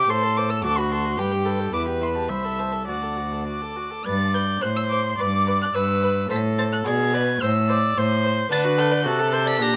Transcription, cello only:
0.09 A2
0.63 D2
1.18 G2
1.73 E2
2.30 C2
2.88 D2
4.05 G2
4.61 A2
5.18 G2
5.74 G2
6.30 A2
6.86 B2
7.42 A2
7.97 A2
8.51 D3
9.06 C3
9.60 A#2

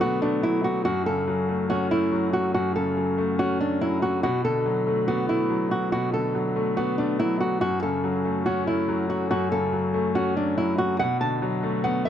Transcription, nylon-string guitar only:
0.01 F#4
0.22 D4
0.43 E4
0.64 F#4
0.85 F#4
1.06 A4
1.70 F#4
1.91 E4
2.33 F#4
2.54 F#4
2.76 A4
3.39 F#4
3.60 D4
3.81 E4
4.02 F#4
4.23 F#4
4.45 A4
5.08 F#4
5.29 E4
5.71 F#4
5.92 F#4
6.14 A4
6.77 F#4
6.98 D4
7.19 E4
7.40 F#4
7.61 F#4
7.83 A4
8.46 F#4
8.67 E4
9.10 F#4
9.31 F#4
9.52 A4
10.15 F#4
10.37 D4
10.58 E4
10.78 F#4
10.99 F#5
11.21 A5
11.84 F#5
12.05 E5

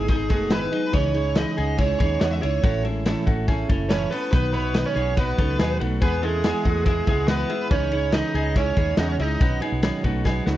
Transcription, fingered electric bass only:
Already playing: G#1
0.30 F#1
0.94 C#2
1.58 C#2
2.00 D#2
2.22 E2
2.44 C#2
2.64 A1
3.28 A1
3.70 F#1
4.33 B1
4.96 B1
5.38 C#2
5.60 D#2
5.81 B1
6.02 E2
6.65 E2
7.07 C#2
7.71 C#2
8.34 C#2
8.77 D#2
8.98 E2
9.19 C#2
9.41 B1
9.72 B1
10.04 B1
10.47 C#2

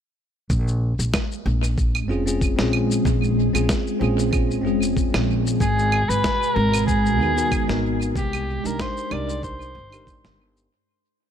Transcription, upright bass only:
0.50 A#1
0.99 A#1
1.46 A#1
2.09 F1
2.59 A#1
3.05 A#1
3.55 A#1
4.01 A#1
4.65 F1
5.14 A#1
5.60 G#1
6.09 G#1
6.56 G#1
7.19 D#2
7.69 G#1
8.15 C2
8.65 C2
9.11 C2
9.75 G1
10.24 G1

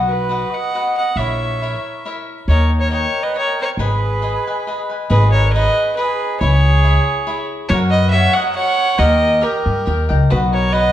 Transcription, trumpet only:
0.08 F#4
0.51 D#5
0.98 D#5
1.19 C#5
2.50 A#4
2.80 A#4
2.94 A#4
3.24 B4
3.40 A#4
3.61 A#4
3.80 G#4
5.09 G#4
5.33 A#4
5.55 B4
6.00 G#4
6.45 G#4
7.72 A#4
7.92 B4
8.14 C#5
8.35 D#5
8.56 C#5
8.99 A#4
9.42 G4
10.30 F#4
10.51 A#4
10.73 B4

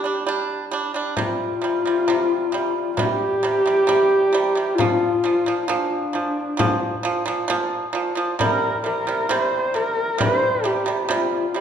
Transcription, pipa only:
0.04 G3 D4
0.27 G3 D4
0.71 G3 D4
0.94 G3 D4
1.17 C3 G3
1.62 C3 G3
1.85 C3 G3
2.08 C3 G3
2.52 C3 G3
2.97 C3 G3
3.43 C3 G3
3.66 C3 G3
3.87 C3 G3
4.33 C3 G3
4.55 C3 G3
4.78 A#2 F3
5.24 A#2 F3
5.46 A#2 F3
5.68 A#2 F3
6.13 A#2 F3
6.57 A#2 F3
7.03 A#2 F3
7.26 A#2 F3
7.48 A#2 F3
7.93 A#2 F3
8.15 A#2 F3
8.39 C3 G3
8.84 C3 G3
9.07 C3 G3
9.29 C3 G3
9.74 C3 G3
10.18 C3 G3
10.64 C3 G3
10.86 C3 G3
11.09 C3 G3
11.54 C3 G3

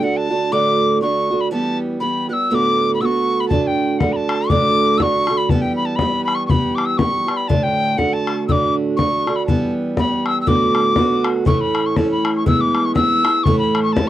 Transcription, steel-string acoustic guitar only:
0.01 D3 A3 D4 F#4
0.30 D3 A3 D4 F#4
0.52 D2 A2 D3 A3 D4 F#4
1.01 D3 A3 D4 F#4
1.30 D3 A3 D4 F#4
1.51 E3 G3 B3 G4
2.00 E3 G3 B3 G4
2.29 G3 B3 G4
2.50 D2 A2 D3 A3 B3 F#4
3.00 D3 A3 B3 F#4
3.50 D2 A2 D3 A3 D4
4.00 D3 A3 D4 F#4
4.50 D2 A2 D3 A3 D4 F#4
4.99 D3 A3 D4 F#4
5.29 D3 A3 D4 F#4
5.50 E3 G3 B3 G4
5.99 E3 G3 B3 G4
6.50 E3 G3 B3 G4
6.99 E3 G3 B3 G4
7.26 G3 B3 G4
7.49 D2 A2 D3 A3 D4
7.97 D3 A3 D4 F#4
8.49 D2 A2 D3 A3 D4 F#4
8.98 D3 A3 D4 F#4
9.26 D3 A3 D4 F#4
9.48 E3 G3 B3 G4
9.97 E3 G3 B3 G4
10.46 D2 A2 D3 A3 B3 F#4
10.96 D3 A3 B3 F#4
11.46 A2 E3 A3 C#4 E4
11.97 E3 A3 C#4 E4
12.46 E3 G#3 B3 E4
12.95 E3 G#3 B3 E4
13.25 G#3 B3 E4
13.46 A2 E3 A3 C#4 E4
13.96 E3 A3 C#4 E4

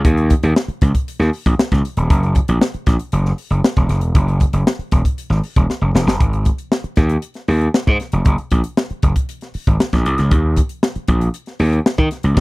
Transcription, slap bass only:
0.05 D#2
0.43 D#2
0.68 muted slap bass stroke
0.82 C#2
1.19 D#2
1.46 A#1
1.58 muted slap bass stroke
1.72 C#2
1.97 D#1
2.10 F#1
2.49 A#1
2.74 muted slap bass stroke
2.86 A#1
3.13 F#1
3.50 F#1
3.77 E1
3.89 F#1
4.02 E1
4.15 F#1
4.53 F#1
4.79 muted slap bass stroke
4.92 E1
5.30 G#1
5.56 E1
5.81 F#1
5.95 E1
6.07 F#1
6.21 G#1
6.84 muted slap bass stroke
6.97 D#2
7.48 D#2
7.87 G#2
8.13 F1
8.26 F#1
8.51 A#1
8.91 muted slap bass stroke
9.03 F#1
9.55 muted slap bass stroke
9.67 G#1
9.93 A#1
10.06 C2
10.19 C#2
10.31 D#2
10.96 muted slap bass stroke
11.08 A#1
11.60 D#2
11.98 D#3
12.24 C#2
12.37 D#2

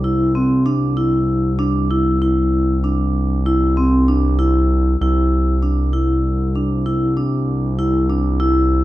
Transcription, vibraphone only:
0.04 E4
0.35 C4
0.66 D4
0.97 E4
1.59 D4
1.91 E4
2.22 E4
2.84 D4
3.46 E4
3.77 C4
4.08 D4
4.39 E4
5.02 E4
5.63 D4
5.93 E4
6.55 D4
6.86 E4
7.17 D4
7.79 E4
8.10 D4
8.40 E4

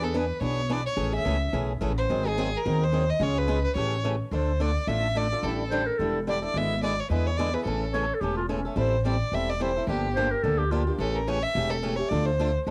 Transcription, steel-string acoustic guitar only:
0.02 B3 D4 G#4
0.14 E3 B3 D4 G#4
0.41 E3 B3 D4 G#4
0.69 E3 B3 D4 G#4
0.96 C#3 E3 A3 C#4 G#4
1.12 A3 C#4 G#4
1.25 C#3 E3 A3 C#4 G#4
1.53 C#3 E3 A3 C#4 G#4
1.81 C#3 E3 A3 C#4 G#4
2.10 D#3 F#3 C4 D#4 G#4
2.25 C4 D#4 G#4
2.38 D#3 F#3 C4 D#4 G#4
2.65 D#3 F#3 C4 D#4 G#4
2.92 D#3 F#3 C4 D#4 G#4
3.20 C#3 G#3 C#4 F4 G#4
3.36 C#4 F4 G#4
3.47 C#3 G#3 C#4 F4 G#4
3.76 C#3 E3 A3 C#4 G4
4.04 C#3 E3 A3 C#4 G4
4.32 D3 A3 D4 F4 A4
4.60 D3 A3 D4 F4 A4
4.88 D3 A3 D4 F4 A4
5.15 D3 A3 D4 F4 A4
5.32 D4 F4 A4
5.44 D3 G3 D4 E4 A4
5.71 D3 G3 D4 E4 A4
6.00 D3 G3 D4 E4 A4
6.27 D3 G3 D4 E4 A4
6.42 D4 E4 A4
6.55 D3 G#3 B3 E4 G#4
6.82 D3 G#3 B3 E4 G#4
7.10 D3 G#3 B3 E4 G#4
7.39 D3 G#3 B3 E4 G#4
7.54 B3 E4 G#4
7.66 C#3 E3 A3 C#4 A4
7.94 C#3 E3 A3 C#4 A4
8.22 C#3 E3 A3 C#4 A4
8.49 C#3 E3 A3 C#4 A4
8.65 A3 C#4 A4
8.76 E3 G3 C4 E4 A4
9.05 E3 G3 C4 E4 A4
9.33 E3 G3 C4 E4 A4
9.60 E3 G3 C4 E4 A4
9.76 C4 E4 A4
9.88 D3 F3 A#3 D4 G4
10.17 D3 F3 A#3 D4 G4
10.44 D3 F3 A#3 D4 G4
10.71 D3 F3 A#3 D4 G4
10.87 A#3 D4 G4
11.00 C#3 E3 A3 C#4 G4
11.28 C#3 E3 A3 C#4 G4
11.56 C#3 E3 A3 C#4 G4
11.82 C#3 E3 A3 C#4 G4
11.99 A3 C#4 G4
12.11 D3 A3 D4 F4 A4
12.39 D3 A3 D4 F4 A4
12.67 D3 A3 D4

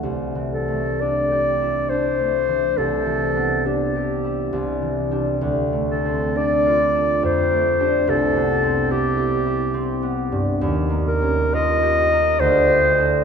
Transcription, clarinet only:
0.51 A4
1.01 D5
1.89 C5
2.78 A4
3.66 G4
5.89 A4
6.37 D5
7.24 C5
8.09 A4
8.91 G4
11.07 A#4
11.54 D#5
12.40 C5

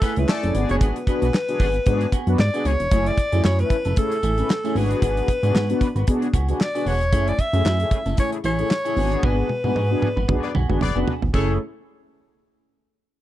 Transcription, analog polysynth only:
0.17 A3 C#4 E4 G#4
0.43 A3 C#4 E4 G#4
0.54 B3 D4 F#4 G#4
1.07 B3 D4 F#4 B4
1.48 B3 D4 F#4 G#4
1.86 B3 D4 F#4 G#4
2.27 B3 D4 F#4 B4
2.54 B3 D4 F#4 G#4
2.91 A3 C#4 E4 G#4
3.32 A3 C#4 E4 G#4
3.59 A3 C#4 E4 B4
3.97 A3 C#4 E4 G#4
4.38 A3 C#4 E4 B4
4.64 A3 C#4 E4 G#4
4.76 A3 D4 F#4 G#4
4.82 B3
5.43 B3 D4 F#4 G#4
5.69 B3 D4 F#4 B4
6.07 B3 D4 F#4 G#4
6.48 B3 D4 F#4 G#4
6.75 B3 D4 F#4 G#4
7.12 A3 C#4 E4 G#4
7.53 A3 C#4 E4 G#4
7.80 A3 C#4 E4 G#4
8.17 A3 C#4 E4 G#4
8.59 A3 C#4 E4 G#4
8.85 A3 C#4 E4 G#4
8.97 B3 D4 F#4 G#4
9.64 B3 D4 F#4 B4
9.90 B3 D4 F#4 G#4
10.28 B3 D4 F#4 G#4
10.69 B3 D4 F#4 G#4
10.95 B3 D4 F#4 B4
11.33 A3 C#4 E4 G#4

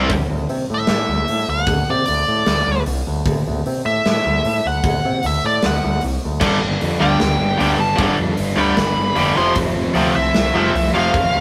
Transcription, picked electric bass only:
Already playing: C2
0.10 D2
0.30 D2
0.49 C3
0.70 A2
0.89 A2
1.09 D2
1.29 A2
1.48 D2
1.67 D2
1.90 C3
2.08 D2
2.28 A2
2.47 D2
2.67 D2
2.86 C2
3.07 D2
3.25 D2
3.48 D2
3.67 C3
3.85 A2
4.06 A2
4.26 D2
4.45 A2
4.66 D2
4.83 D2
5.05 C3
5.24 D2
5.44 A2
5.65 D2
5.84 D2
6.03 C2
6.25 D2
6.41 G1
6.63 G1
6.82 F2
7.00 D2
7.21 D2
7.40 G1
7.60 D2
7.78 G1
7.98 G1
8.19 F2
8.39 G1
8.57 D2
8.77 G1
8.96 G1
9.16 F1
9.37 F1
9.57 F1
9.76 F1
9.95 D2
10.15 C2
10.36 C2
10.55 F1
10.74 C2
10.95 F1
11.14 F1
11.35 D2

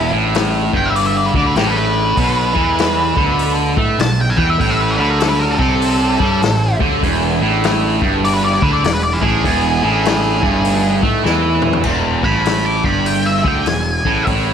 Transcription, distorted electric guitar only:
Already playing: E2
0.12 A2
0.73 G2
1.34 D3
1.57 A2
2.18 B2
2.54 E3
3.17 D3
3.77 A3
3.99 B2
4.37 E3
4.59 A2
4.97 D3
5.58 C3
6.20 G3
6.42 A2
6.80 D3
7.03 E2
7.41 A2
8.01 G2
8.62 D3
8.84 E2
9.22 A2
9.44 E2
9.83 A2
10.42 G2
11.03 A3
11.24 E3
11.84 E2
12.23 A2
12.84 G2
13.44 D3
13.67 E2
14.06 A2
14.27 A2

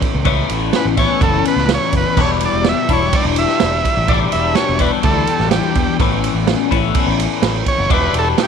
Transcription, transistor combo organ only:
0.76 B4
0.99 C#5
1.23 A4
1.48 B4
1.74 C#5
1.97 B4
2.21 C#5
2.45 D5
2.69 E5
2.93 C#5
3.15 D5
3.38 E5
4.09 D5
4.32 E5
4.55 C#5
4.81 B4
5.04 A4
5.52 G4
7.68 C#5
7.94 B4
8.19 A4
8.43 G4

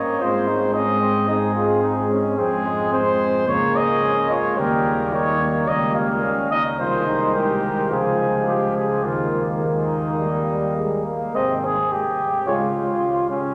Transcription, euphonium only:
0.20 G#3
0.75 G#3
1.29 G#3
2.38 G#3
2.93 G#3
3.47 G#3
4.57 G3
5.68 G3
6.79 D#3
7.91 F3
9.05 D#3
9.62 D#3
10.20 G3
10.77 G#3
11.07 A#3
11.35 C3
12.46 C#3

